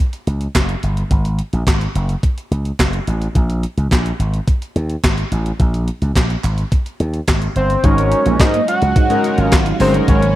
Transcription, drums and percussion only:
0.13 closed hi-hat
0.27 closed hi-hat
0.41 closed hi-hat
0.55 kick, snare, clap, closed hi-hat
0.69 closed hi-hat
0.83 closed hi-hat
0.97 closed hi-hat
1.11 kick, closed hi-hat
1.25 closed hi-hat
1.39 closed hi-hat
1.53 closed hi-hat
1.67 kick, snare, clap, closed hi-hat
1.81 closed hi-hat
1.96 closed hi-hat
2.09 closed hi-hat
2.23 kick, closed hi-hat
2.38 closed hi-hat
2.52 closed hi-hat
2.65 closed hi-hat
2.79 kick, snare, clap, closed hi-hat
2.93 closed hi-hat
3.07 closed hi-hat
3.22 closed hi-hat
3.35 kick, closed hi-hat
3.50 closed hi-hat
3.63 closed hi-hat
3.78 closed hi-hat
3.91 kick, snare, clap, closed hi-hat
4.06 closed hi-hat
4.20 closed hi-hat
4.34 closed hi-hat
4.48 kick, closed hi-hat
4.62 closed hi-hat
4.76 closed hi-hat
4.90 closed hi-hat
5.04 kick, snare, clap, closed hi-hat
5.18 closed hi-hat
5.32 closed hi-hat
5.46 closed hi-hat
5.60 kick, closed hi-hat
5.74 closed hi-hat
5.88 closed hi-hat
6.02 closed hi-hat
6.16 kick, snare, clap, closed hi-hat
6.30 closed hi-hat
6.44 clap, closed hi-hat
6.58 closed hi-hat
6.72 kick, closed hi-hat
6.86 closed hi-hat
7.00 closed hi-hat
7.14 closed hi-hat
7.28 kick, snare, clap, closed hi-hat
7.42 closed hi-hat
7.56 closed hi-hat
7.70 closed hi-hat
7.84 kick, closed hi-hat
7.98 closed hi-hat
8.12 closed hi-hat
8.26 closed hi-hat
8.40 kick, snare, clap, closed hi-hat
8.54 closed hi-hat
8.68 closed hi-hat
8.82 closed hi-hat
8.96 kick, closed hi-hat
9.10 closed hi-hat
9.24 closed hi-hat
9.38 closed hi-hat
9.52 kick, snare, clap, closed hi-hat
9.66 closed hi-hat
9.80 open hi-hat
9.94 closed hi-hat
10.08 kick, closed hi-hat
10.22 closed hi-hat

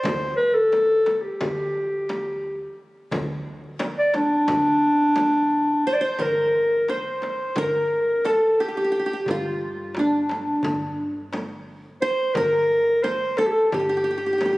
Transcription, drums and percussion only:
0.04 darbuka dum, frame drum
0.55 darbuka ka
0.72 darbuka tek, frame drum
1.06 darbuka tek, frame drum
1.41 frame drum, darbuka dum
1.77 darbuka ka
2.09 darbuka tek, frame drum
3.12 darbuka dum, frame drum
3.64 darbuka ka
3.79 darbuka tek, frame drum
4.14 darbuka tek, frame drum
4.48 frame drum, darbuka dum
4.68 darbuka ka
4.84 darbuka ka
5.16 darbuka tek, frame drum
6.19 frame drum, darbuka dum
6.88 darbuka tek, frame drum
7.22 darbuka tek, frame drum
7.56 frame drum, darbuka dum
8.25 darbuka tek, frame drum
9.26 darbuka dum, frame drum
9.95 darbuka tek, frame drum
10.29 darbuka tek, frame drum
10.63 darbuka dum, frame drum
11.33 darbuka tek, frame drum
12.35 darbuka dum, frame drum
13.04 darbuka tek, frame drum
13.37 darbuka tek, frame drum
13.72 frame drum, darbuka dum
14.41 darbuka tek, frame drum

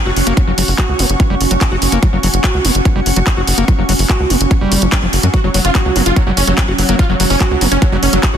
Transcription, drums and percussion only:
0.16 open hi-hat
0.27 closed hi-hat
0.37 kick, closed hi-hat
0.58 open hi-hat
0.68 open hi-hat
0.78 kick, clap, closed hi-hat
0.99 open hi-hat
1.10 closed hi-hat
1.20 kick, closed hi-hat
1.41 open hi-hat
1.51 closed hi-hat
1.61 kick, clap, closed hi-hat
1.82 open hi-hat
1.92 closed hi-hat
2.03 kick, closed hi-hat
2.23 open hi-hat
2.34 closed hi-hat
2.44 kick, clap, closed hi-hat
2.65 open hi-hat
2.75 closed hi-hat
2.85 kick, closed hi-hat
3.06 open hi-hat
3.16 closed hi-hat
3.27 kick, clap, closed hi-hat
3.47 open hi-hat
3.58 closed hi-hat
3.68 kick, closed hi-hat
3.89 open hi-hat
3.99 open hi-hat
4.10 kick, clap
4.30 open hi-hat
4.41 closed hi-hat
4.51 kick, closed hi-hat
4.72 open hi-hat
4.82 closed hi-hat
4.92 kick, clap, closed hi-hat
5.13 open hi-hat
5.23 closed hi-hat
5.34 kick, closed hi-hat
5.54 open hi-hat
5.65 closed hi-hat
5.75 kick, clap, closed hi-hat
5.96 open hi-hat
6.06 closed hi-hat
6.16 kick, closed hi-hat
6.37 open hi-hat
6.47 closed hi-hat
6.58 kick, clap, closed hi-hat
6.78 open hi-hat
6.89 closed hi-hat
6.99 kick, closed hi-hat
7.20 open hi-hat
7.30 open hi-hat
7.41 kick, clap, closed hi-hat
7.61 open hi-hat
7.72 closed hi-hat
7.82 kick, closed hi-hat
8.03 open hi-hat
8.13 closed hi-hat
8.23 kick, clap, closed hi-hat

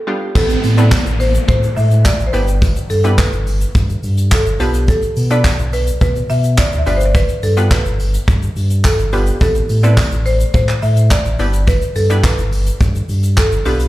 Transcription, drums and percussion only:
0.35 kick, crash, tambourine
0.49 closed hi-hat, shaker
0.64 open hi-hat, tambourine, shaker
0.78 closed hi-hat, shaker
0.92 kick, snare, clap, tambourine, shaker
1.06 closed hi-hat, shaker
1.20 open hi-hat, tambourine, shaker
1.35 closed hi-hat, shaker
1.49 kick, shaker
1.63 closed hi-hat, shaker
1.77 open hi-hat, shaker
1.91 closed hi-hat, shaker
2.05 kick, snare, clap, tambourine, shaker
2.20 closed hi-hat, shaker
2.33 open hi-hat, tambourine, shaker
2.48 closed hi-hat, shaker
2.62 kick, tambourine, shaker
2.76 closed hi-hat, shaker
2.90 open hi-hat, tambourine, shaker
3.04 closed hi-hat, shaker
3.18 kick, snare, clap, tambourine, shaker
3.33 closed hi-hat, shaker
3.47 open hi-hat, tambourine, shaker
3.61 closed hi-hat, shaker
3.75 kick, tambourine, shaker
3.90 closed hi-hat, shaker
4.03 open hi-hat, tambourine, shaker
4.18 closed hi-hat, shaker
4.32 kick, snare, clap, tambourine, shaker
4.46 closed hi-hat, shaker
4.60 open hi-hat, tambourine, shaker
4.74 closed hi-hat, shaker
4.88 kick, tambourine, shaker
5.02 closed hi-hat, shaker
5.16 open hi-hat, tambourine, shaker
5.31 closed hi-hat, shaker
5.45 kick, snare, clap, tambourine, shaker
5.59 closed hi-hat, shaker
5.73 open hi-hat, tambourine, shaker
5.87 closed hi-hat, shaker
6.01 kick, tambourine, shaker
6.16 closed hi-hat, shaker
6.30 open hi-hat, tambourine, shaker
6.44 closed hi-hat, shaker
6.58 kick, snare, clap, tambourine, shaker
6.72 closed hi-hat, shaker
6.86 open hi-hat, tambourine, shaker
7.00 closed hi-hat, shaker
7.15 kick, tambourine, shaker
7.29 closed hi-hat, shaker
7.43 open hi-hat, tambourine, shaker
7.57 closed hi-hat, shaker
7.71 kick, snare, clap, tambourine, shaker
7.86 closed hi-hat, shaker
8.00 open hi-hat, tambourine, shaker
8.14 closed hi-hat, shaker
8.28 kick, tambourine, shaker
8.42 closed hi-hat, shaker
8.56 open hi-hat, shaker
8.70 closed hi-hat, shaker
8.84 kick, snare, clap, tambourine, shaker
8.99 closed hi-hat, shaker
9.13 open hi-hat, tambourine, shaker
9.27 closed hi-hat, shaker
9.41 kick, tambourine, shaker
9.55 closed hi-hat, shaker
9.69 open hi-hat, tambourine, shaker
9.83 closed hi-hat, shaker
9.97 kick, snare, clap, tambourine, shaker
10.12 closed hi-hat, shaker
10.26 open hi-hat, tambourine, shaker
10.40 closed hi-hat, shaker
10.54 kick, shaker
10.69 clap, closed hi-hat, shaker
10.83 open hi-hat, shaker
10.97 closed hi-hat, shaker
11.11 kick, snare, clap, tambourine, shaker
11.25 closed hi-hat, shaker
11.39 open hi-hat, tambourine, shaker
11.53 closed hi-hat, shaker
11.68 kick, tambourine, shaker
11.82 closed hi-hat, shaker
11.96 open hi-hat, tambourine, shaker
12.10 closed hi-hat, shaker
12.24 kick, snare, clap, tambourine, shaker
12.38 closed hi-hat, shaker
12.52 open hi-hat, tambourine, shaker
12.67 closed hi-hat, shaker
12.81 kick, tambourine, shaker
12.95 closed hi-hat, shaker
13.09 open hi-hat, shaker
13.23 closed hi-hat, shaker
13.37 kick, snare, clap, tambourine, shaker
13.52 closed hi-hat, shaker
13.65 open hi-hat, tambourine, shaker
13.80 closed hi-hat, shaker

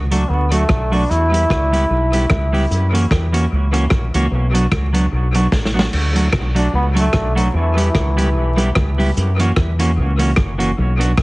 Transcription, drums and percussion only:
0.12 closed hi-hat
0.52 closed hi-hat
0.69 kick, cross-stick
0.93 open hi-hat
1.10 hi-hat pedal
1.34 closed hi-hat
1.50 kick, cross-stick
1.74 closed hi-hat
2.13 closed hi-hat
2.30 kick, cross-stick
2.54 open hi-hat
2.71 hi-hat pedal
2.95 closed hi-hat
3.11 kick, cross-stick
3.34 closed hi-hat
3.74 closed hi-hat
3.90 kick, cross-stick
4.14 closed hi-hat
4.55 closed hi-hat
4.72 kick, cross-stick
4.94 closed hi-hat
5.34 closed hi-hat
5.52 kick, snare
5.65 snare
5.79 snare
5.93 crash
6.16 closed hi-hat
6.33 kick, cross-stick
6.56 closed hi-hat
6.97 closed hi-hat
7.13 kick, cross-stick
7.37 closed hi-hat
7.78 closed hi-hat
7.95 kick, cross-stick
8.18 closed hi-hat
8.58 closed hi-hat
8.75 kick, cross-stick
9.00 open hi-hat
9.16 hi-hat pedal
9.40 closed hi-hat
9.56 kick, cross-stick
9.80 closed hi-hat
10.19 closed hi-hat
10.36 kick, cross-stick
10.60 closed hi-hat
11.01 closed hi-hat
11.18 kick, cross-stick

